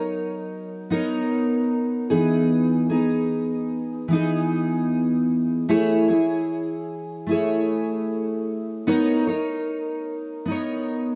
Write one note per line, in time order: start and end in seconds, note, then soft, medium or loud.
0.00 1.21 F#3 medium
0.00 0.91 D#4 soft
0.00 0.91 A#4 soft
0.00 0.91 C#5 medium
0.90 2.11 B3 medium
0.90 2.10 D#4 medium
0.90 2.10 A#4 medium
0.90 2.11 C#5 medium
2.10 2.94 E3 medium
2.10 2.91 B3 medium
2.10 2.90 D#4 medium
2.10 2.89 G#4 medium
2.90 4.09 B3 soft
2.90 4.10 D#4 medium
2.90 4.14 G#4 medium
4.08 7.58 E3 medium
4.08 5.68 B3 medium
4.12 5.69 D#4 medium
4.12 5.70 G#4 medium
5.69 6.09 A3 medium
5.69 6.09 E4 medium
5.69 6.08 G#4 medium
5.69 6.07 C#5 medium
6.08 7.28 E4 soft
6.08 7.29 G#4 soft
6.08 7.32 C#5 medium
7.27 8.86 A3 medium
7.27 8.87 E4 medium
7.31 8.88 G#4 medium
7.31 8.88 C#5 medium
8.87 9.27 B3 medium
8.87 9.28 D#4 medium
8.87 9.27 A#4 medium
8.87 9.26 C#5 medium
9.27 10.47 D#4 soft
9.27 10.48 A#4 medium
9.27 10.48 C#5 medium
10.45 11.15 B3 medium
10.45 11.15 D#4 medium
10.50 11.15 A#4 medium
10.50 11.15 C#5 medium